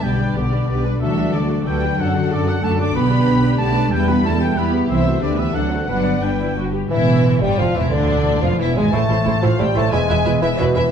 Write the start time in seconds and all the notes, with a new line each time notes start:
Already playing: G3 B3 G4
0.03 B1 B2 G3 B3 G4 D5 G5
0.21 B3 D4 B4
0.36 B1 D3 B3 D4 G4 D5
0.52 D4 G4 B4
0.69 B1 B3 D4 G4 B4
0.85 G3 D4 B4
1.01 D2 D3 E3 F#3 D4 F#4 A4 E5
1.18 F#3 D4 F#4
1.34 D2 D3 F#4 A4 D5
1.50 D4 F#4
1.66 D2 G3 F#4 A4 B4 G5
1.83 D4 F#4
1.99 F#2 F#3 D4 F#4 A4 F#5
2.15 D3 D4 F#4
2.31 F#2 D3 D4 F#4 A4 D5
2.47 F#3 D4 F#4 A4 F#5
2.63 F#2 A3 D4 F#4 A4 A5
2.79 F#3 D4 F#4 D5 D6
2.95 B1 B2 G3 B3 D4 G4 B4 B5
3.11 B3 D4 B4
3.28 B1 B3 D4 G4
3.44 D4 B4
3.58 B1 A3 B3 G4 D5 A5
3.76 G3 D4 B4
3.91 E2 E3 G3 E4 B4 G5
4.07 G3 B3 G4 B4 B5
4.24 E2 G3 A3 E4 A4 A5
4.41 G3 B3 G4 G5
4.56 E2 G3 B3 E4 G4 B4 B5
4.74 B3 E4 G4
4.89 C2 C3 E3 A3 C4 E4 C5 E5
5.05 A3 C4 E4 F#4 C5
5.21 D2 D3 B3 D4 G4 B4 D5
5.38 E3 B3 G4 B4 E5
5.54 D2 D3 F#3 C4 D4 A4 F#5
5.71 C4 F#4 A4 D5
5.86 G1 G2 F#3 B3 D4 B4 F#5
6.05 D3 B3 D5
6.22 G1 G3 B3 D4 B4 G5
6.39 E4 D5
6.56 G1 F#4 B4
6.73 B3 G4
6.90 E1 E2 A2 E3 E4 E5
6.99 E3
7.08 A3
7.16 E4
7.25 C5
7.33 A4
7.41 G1 G2 G3 E5 G5
7.50 C6
7.58 F1 F2 F3 F4 E5 F5
7.75 E1 E2 E3 E4 C5 E5
7.85 E4
7.92 D2 E2 D3 D4 D5
8.01 B2
8.10 G#3
8.18 E4
8.26 B4
8.35 G#4
8.42 F1 F2 F3 F4 E5 F5
8.51 B5
8.59 E1 E2 E3 E4 E5
8.69 G#4
8.76 G#1 G#2 G#3 B4 G#5
8.85 E4
8.93 A1 A2 A3 E4 A4 C5 A5
9.02 E3
9.09 A1 A2 A3 E4 A4 C5
9.18 E4
9.25 A1 A2 E4 A4 C5
9.35 A4
9.42 A1 A2 F3 E4 A4 C5 E5 F5
9.51 C6
9.59 A1 A2 G3 E4 A4 C5 E5 G5
9.68 A4
9.76 A1 A2 A3 E4 A4 C5 A5
9.84 E4
9.92 E1 E2 G#3 E4 B4 E5 G#5
10.01 B2
10.09 E1 E2 B3 E4 B4 E5
10.18 E4
10.26 E1 E2 E4 B4 E5
10.34 E4
10.42 E1 E2 E3 E4 B4 E5
10.50 B5
10.59 E1 E2 B2 E4 B4 E5
10.68 B4
10.75 E1 E2 E3 E4 B4 E5
10.84 B3